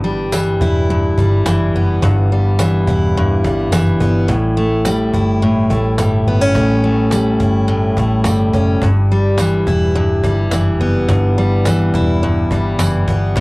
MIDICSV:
0, 0, Header, 1, 5, 480
1, 0, Start_track
1, 0, Tempo, 566572
1, 1714, Time_signature, 4, 2, 24, 8
1, 11356, End_track
2, 0, Start_track
2, 0, Title_t, "Steel-string acoustic guitar"
2, 0, Program_c, 0, 25
2, 0, Note_on_c, 0, 43, 79
2, 0, Note_on_c, 0, 52, 57
2, 33, Note_on_c, 0, 55, 62
2, 279, Note_off_c, 0, 52, 0
2, 282, Note_on_c, 0, 52, 76
2, 522, Note_on_c, 0, 64, 69
2, 754, Note_off_c, 0, 43, 0
2, 764, Note_on_c, 0, 43, 74
2, 999, Note_off_c, 0, 55, 0
2, 1002, Note_on_c, 0, 55, 52
2, 1234, Note_off_c, 0, 52, 0
2, 1238, Note_on_c, 0, 52, 76
2, 1488, Note_on_c, 0, 59, 59
2, 1707, Note_off_c, 0, 43, 0
2, 1717, Note_on_c, 0, 43, 82
2, 1963, Note_off_c, 0, 55, 0
2, 1967, Note_on_c, 0, 55, 58
2, 2197, Note_off_c, 0, 52, 0
2, 2200, Note_on_c, 0, 52, 78
2, 2438, Note_off_c, 0, 64, 0
2, 2441, Note_on_c, 0, 64, 64
2, 2675, Note_off_c, 0, 43, 0
2, 2688, Note_on_c, 0, 43, 81
2, 2915, Note_off_c, 0, 55, 0
2, 2918, Note_on_c, 0, 55, 60
2, 3149, Note_off_c, 0, 52, 0
2, 3152, Note_on_c, 0, 52, 73
2, 3381, Note_off_c, 0, 59, 0
2, 3391, Note_on_c, 0, 59, 63
2, 3627, Note_on_c, 0, 45, 81
2, 3640, Note_off_c, 0, 43, 0
2, 3680, Note_off_c, 0, 59, 0
2, 3867, Note_off_c, 0, 55, 0
2, 3871, Note_on_c, 0, 57, 64
2, 4117, Note_off_c, 0, 52, 0
2, 4120, Note_on_c, 0, 55, 74
2, 4353, Note_off_c, 0, 64, 0
2, 4356, Note_on_c, 0, 64, 71
2, 4583, Note_off_c, 0, 45, 0
2, 4594, Note_on_c, 0, 45, 73
2, 4823, Note_off_c, 0, 57, 0
2, 4834, Note_on_c, 0, 57, 57
2, 5069, Note_off_c, 0, 55, 0
2, 5073, Note_on_c, 0, 55, 71
2, 5318, Note_on_c, 0, 59, 63
2, 5433, Note_off_c, 0, 59, 0
2, 5433, Note_on_c, 0, 61, 48
2, 5541, Note_off_c, 0, 45, 0
2, 5551, Note_on_c, 0, 45, 87
2, 5783, Note_off_c, 0, 57, 0
2, 5793, Note_on_c, 0, 57, 60
2, 6034, Note_off_c, 0, 55, 0
2, 6037, Note_on_c, 0, 55, 77
2, 6264, Note_off_c, 0, 64, 0
2, 6267, Note_on_c, 0, 64, 62
2, 6495, Note_off_c, 0, 45, 0
2, 6505, Note_on_c, 0, 45, 79
2, 6748, Note_off_c, 0, 57, 0
2, 6758, Note_on_c, 0, 57, 59
2, 6985, Note_off_c, 0, 55, 0
2, 6989, Note_on_c, 0, 55, 72
2, 7225, Note_off_c, 0, 61, 0
2, 7235, Note_on_c, 0, 61, 57
2, 7468, Note_off_c, 0, 45, 0
2, 7478, Note_on_c, 0, 43, 81
2, 7521, Note_off_c, 0, 61, 0
2, 7523, Note_off_c, 0, 57, 0
2, 7722, Note_off_c, 0, 55, 0
2, 7722, Note_on_c, 0, 55, 59
2, 7961, Note_on_c, 0, 52, 72
2, 8193, Note_off_c, 0, 64, 0
2, 8196, Note_on_c, 0, 64, 67
2, 8423, Note_off_c, 0, 43, 0
2, 8433, Note_on_c, 0, 43, 77
2, 8673, Note_off_c, 0, 55, 0
2, 8676, Note_on_c, 0, 55, 60
2, 8920, Note_off_c, 0, 52, 0
2, 8923, Note_on_c, 0, 52, 70
2, 9155, Note_on_c, 0, 59, 59
2, 9382, Note_off_c, 0, 43, 0
2, 9392, Note_on_c, 0, 43, 85
2, 9637, Note_off_c, 0, 55, 0
2, 9640, Note_on_c, 0, 55, 69
2, 9882, Note_off_c, 0, 52, 0
2, 9886, Note_on_c, 0, 52, 77
2, 10120, Note_off_c, 0, 64, 0
2, 10123, Note_on_c, 0, 64, 66
2, 10350, Note_off_c, 0, 43, 0
2, 10360, Note_on_c, 0, 43, 86
2, 10601, Note_off_c, 0, 55, 0
2, 10604, Note_on_c, 0, 55, 59
2, 10831, Note_off_c, 0, 52, 0
2, 10834, Note_on_c, 0, 52, 73
2, 11068, Note_off_c, 0, 59, 0
2, 11078, Note_on_c, 0, 59, 58
2, 11319, Note_off_c, 0, 43, 0
2, 11323, Note_on_c, 0, 45, 87
2, 11356, Note_off_c, 0, 45, 0
2, 11356, Note_off_c, 0, 52, 0
2, 11356, Note_off_c, 0, 55, 0
2, 11356, Note_off_c, 0, 59, 0
2, 11356, Note_off_c, 0, 64, 0
2, 11356, End_track
3, 0, Start_track
3, 0, Title_t, "Fingered electric bass"
3, 0, Program_c, 1, 33
3, 0, Note_on_c, 1, 31, 98
3, 481, Note_off_c, 1, 31, 0
3, 516, Note_on_c, 1, 28, 84
3, 961, Note_off_c, 1, 28, 0
3, 996, Note_on_c, 1, 31, 105
3, 1216, Note_off_c, 1, 31, 0
3, 1233, Note_on_c, 1, 30, 83
3, 1454, Note_off_c, 1, 30, 0
3, 1472, Note_on_c, 1, 30, 90
3, 1694, Note_off_c, 1, 30, 0
3, 1715, Note_on_c, 1, 31, 99
3, 2400, Note_off_c, 1, 31, 0
3, 2433, Note_on_c, 1, 28, 91
3, 2879, Note_off_c, 1, 28, 0
3, 2916, Note_on_c, 1, 31, 89
3, 3135, Note_off_c, 1, 31, 0
3, 3146, Note_on_c, 1, 30, 88
3, 3370, Note_off_c, 1, 30, 0
3, 3393, Note_on_c, 1, 31, 100
3, 3614, Note_off_c, 1, 31, 0
3, 3629, Note_on_c, 1, 33, 102
3, 4316, Note_off_c, 1, 33, 0
3, 4350, Note_on_c, 1, 31, 84
3, 4797, Note_off_c, 1, 31, 0
3, 4827, Note_on_c, 1, 33, 104
3, 5050, Note_off_c, 1, 33, 0
3, 5071, Note_on_c, 1, 31, 88
3, 5292, Note_off_c, 1, 31, 0
3, 5309, Note_on_c, 1, 31, 97
3, 5531, Note_off_c, 1, 31, 0
3, 5550, Note_on_c, 1, 33, 101
3, 6237, Note_off_c, 1, 33, 0
3, 6268, Note_on_c, 1, 31, 96
3, 6716, Note_off_c, 1, 31, 0
3, 6753, Note_on_c, 1, 33, 93
3, 6984, Note_on_c, 1, 31, 84
3, 6997, Note_off_c, 1, 33, 0
3, 7208, Note_off_c, 1, 31, 0
3, 7230, Note_on_c, 1, 30, 88
3, 7452, Note_off_c, 1, 30, 0
3, 7468, Note_on_c, 1, 31, 97
3, 8156, Note_off_c, 1, 31, 0
3, 8189, Note_on_c, 1, 28, 89
3, 8637, Note_off_c, 1, 28, 0
3, 8671, Note_on_c, 1, 31, 106
3, 8892, Note_off_c, 1, 31, 0
3, 8907, Note_on_c, 1, 30, 86
3, 9131, Note_off_c, 1, 30, 0
3, 9141, Note_on_c, 1, 30, 85
3, 9367, Note_off_c, 1, 30, 0
3, 9390, Note_on_c, 1, 31, 116
3, 10078, Note_off_c, 1, 31, 0
3, 10112, Note_on_c, 1, 28, 101
3, 10560, Note_off_c, 1, 28, 0
3, 10595, Note_on_c, 1, 31, 92
3, 10816, Note_off_c, 1, 31, 0
3, 10831, Note_on_c, 1, 30, 84
3, 11054, Note_off_c, 1, 30, 0
3, 11078, Note_on_c, 1, 31, 98
3, 11298, Note_off_c, 1, 31, 0
3, 11314, Note_on_c, 1, 33, 112
3, 11356, Note_off_c, 1, 33, 0
3, 11356, End_track
4, 0, Start_track
4, 0, Title_t, "Cajon"
4, 158, Note_on_c, 9, 38, 29
4, 242, Note_off_c, 9, 38, 0
4, 276, Note_on_c, 9, 38, 113
4, 360, Note_off_c, 9, 38, 0
4, 400, Note_on_c, 9, 38, 27
4, 485, Note_off_c, 9, 38, 0
4, 516, Note_on_c, 9, 36, 86
4, 601, Note_off_c, 9, 36, 0
4, 880, Note_on_c, 9, 38, 26
4, 965, Note_off_c, 9, 38, 0
4, 997, Note_on_c, 9, 36, 94
4, 1082, Note_off_c, 9, 36, 0
4, 1235, Note_on_c, 9, 38, 126
4, 1320, Note_off_c, 9, 38, 0
4, 1474, Note_on_c, 9, 38, 29
4, 1559, Note_off_c, 9, 38, 0
4, 1591, Note_on_c, 9, 38, 30
4, 1676, Note_off_c, 9, 38, 0
4, 1715, Note_on_c, 9, 36, 117
4, 1800, Note_off_c, 9, 36, 0
4, 1838, Note_on_c, 9, 38, 33
4, 1922, Note_off_c, 9, 38, 0
4, 1959, Note_on_c, 9, 38, 33
4, 2043, Note_off_c, 9, 38, 0
4, 2080, Note_on_c, 9, 38, 28
4, 2165, Note_off_c, 9, 38, 0
4, 2194, Note_on_c, 9, 38, 111
4, 2279, Note_off_c, 9, 38, 0
4, 2323, Note_on_c, 9, 38, 30
4, 2408, Note_off_c, 9, 38, 0
4, 2435, Note_on_c, 9, 36, 87
4, 2520, Note_off_c, 9, 36, 0
4, 2802, Note_on_c, 9, 38, 26
4, 2886, Note_off_c, 9, 38, 0
4, 2917, Note_on_c, 9, 36, 97
4, 3002, Note_off_c, 9, 36, 0
4, 3036, Note_on_c, 9, 38, 34
4, 3040, Note_off_c, 9, 38, 0
4, 3040, Note_on_c, 9, 38, 30
4, 3125, Note_off_c, 9, 38, 0
4, 3156, Note_on_c, 9, 38, 114
4, 3241, Note_off_c, 9, 38, 0
4, 3272, Note_on_c, 9, 38, 26
4, 3357, Note_off_c, 9, 38, 0
4, 3395, Note_on_c, 9, 36, 91
4, 3479, Note_off_c, 9, 36, 0
4, 3509, Note_on_c, 9, 38, 27
4, 3593, Note_off_c, 9, 38, 0
4, 3631, Note_on_c, 9, 36, 108
4, 3716, Note_off_c, 9, 36, 0
4, 3993, Note_on_c, 9, 38, 29
4, 4077, Note_off_c, 9, 38, 0
4, 4109, Note_on_c, 9, 38, 100
4, 4193, Note_off_c, 9, 38, 0
4, 4351, Note_on_c, 9, 36, 88
4, 4436, Note_off_c, 9, 36, 0
4, 4475, Note_on_c, 9, 38, 28
4, 4560, Note_off_c, 9, 38, 0
4, 4710, Note_on_c, 9, 38, 25
4, 4794, Note_off_c, 9, 38, 0
4, 4830, Note_on_c, 9, 36, 95
4, 4915, Note_off_c, 9, 36, 0
4, 4945, Note_on_c, 9, 38, 34
4, 4949, Note_off_c, 9, 38, 0
4, 4949, Note_on_c, 9, 38, 30
4, 5034, Note_off_c, 9, 38, 0
4, 5068, Note_on_c, 9, 38, 104
4, 5152, Note_off_c, 9, 38, 0
4, 5181, Note_on_c, 9, 38, 29
4, 5266, Note_off_c, 9, 38, 0
4, 5307, Note_on_c, 9, 38, 31
4, 5392, Note_off_c, 9, 38, 0
4, 5423, Note_on_c, 9, 38, 29
4, 5508, Note_off_c, 9, 38, 0
4, 5550, Note_on_c, 9, 36, 112
4, 5635, Note_off_c, 9, 36, 0
4, 5911, Note_on_c, 9, 38, 29
4, 5996, Note_off_c, 9, 38, 0
4, 6024, Note_on_c, 9, 38, 110
4, 6109, Note_off_c, 9, 38, 0
4, 6270, Note_on_c, 9, 36, 82
4, 6355, Note_off_c, 9, 36, 0
4, 6627, Note_on_c, 9, 38, 25
4, 6712, Note_off_c, 9, 38, 0
4, 6751, Note_on_c, 9, 36, 100
4, 6836, Note_off_c, 9, 36, 0
4, 6982, Note_on_c, 9, 38, 119
4, 7067, Note_off_c, 9, 38, 0
4, 7231, Note_on_c, 9, 36, 92
4, 7316, Note_off_c, 9, 36, 0
4, 7343, Note_on_c, 9, 38, 30
4, 7427, Note_off_c, 9, 38, 0
4, 7469, Note_on_c, 9, 36, 114
4, 7554, Note_off_c, 9, 36, 0
4, 7703, Note_on_c, 9, 38, 31
4, 7788, Note_off_c, 9, 38, 0
4, 7943, Note_on_c, 9, 38, 106
4, 8028, Note_off_c, 9, 38, 0
4, 8191, Note_on_c, 9, 36, 87
4, 8276, Note_off_c, 9, 36, 0
4, 8550, Note_on_c, 9, 38, 27
4, 8634, Note_off_c, 9, 38, 0
4, 8671, Note_on_c, 9, 36, 94
4, 8756, Note_off_c, 9, 36, 0
4, 8786, Note_on_c, 9, 38, 34
4, 8790, Note_off_c, 9, 38, 0
4, 8790, Note_on_c, 9, 38, 32
4, 8875, Note_off_c, 9, 38, 0
4, 8907, Note_on_c, 9, 38, 123
4, 8992, Note_off_c, 9, 38, 0
4, 9268, Note_on_c, 9, 38, 29
4, 9352, Note_off_c, 9, 38, 0
4, 9392, Note_on_c, 9, 36, 117
4, 9477, Note_off_c, 9, 36, 0
4, 9754, Note_on_c, 9, 38, 29
4, 9838, Note_off_c, 9, 38, 0
4, 9873, Note_on_c, 9, 38, 108
4, 9957, Note_off_c, 9, 38, 0
4, 10115, Note_on_c, 9, 36, 90
4, 10199, Note_off_c, 9, 36, 0
4, 10476, Note_on_c, 9, 38, 25
4, 10561, Note_off_c, 9, 38, 0
4, 10596, Note_on_c, 9, 36, 96
4, 10681, Note_off_c, 9, 36, 0
4, 10835, Note_on_c, 9, 38, 114
4, 10919, Note_off_c, 9, 38, 0
4, 10954, Note_on_c, 9, 38, 29
4, 11039, Note_off_c, 9, 38, 0
4, 11078, Note_on_c, 9, 36, 95
4, 11163, Note_off_c, 9, 36, 0
4, 11316, Note_on_c, 9, 36, 112
4, 11356, Note_off_c, 9, 36, 0
4, 11356, End_track
5, 0, Start_track
5, 0, Title_t, "Drums"
5, 274, Note_on_c, 9, 54, 88
5, 359, Note_off_c, 9, 54, 0
5, 1237, Note_on_c, 9, 54, 78
5, 1321, Note_off_c, 9, 54, 0
5, 2193, Note_on_c, 9, 54, 85
5, 2278, Note_off_c, 9, 54, 0
5, 3152, Note_on_c, 9, 54, 85
5, 3237, Note_off_c, 9, 54, 0
5, 4111, Note_on_c, 9, 54, 88
5, 4196, Note_off_c, 9, 54, 0
5, 5068, Note_on_c, 9, 54, 78
5, 5153, Note_off_c, 9, 54, 0
5, 6033, Note_on_c, 9, 54, 92
5, 6118, Note_off_c, 9, 54, 0
5, 6992, Note_on_c, 9, 54, 82
5, 7077, Note_off_c, 9, 54, 0
5, 7948, Note_on_c, 9, 54, 82
5, 8032, Note_off_c, 9, 54, 0
5, 8908, Note_on_c, 9, 54, 74
5, 8993, Note_off_c, 9, 54, 0
5, 9876, Note_on_c, 9, 54, 82
5, 9961, Note_off_c, 9, 54, 0
5, 10837, Note_on_c, 9, 54, 85
5, 10922, Note_off_c, 9, 54, 0
5, 11356, End_track
0, 0, End_of_file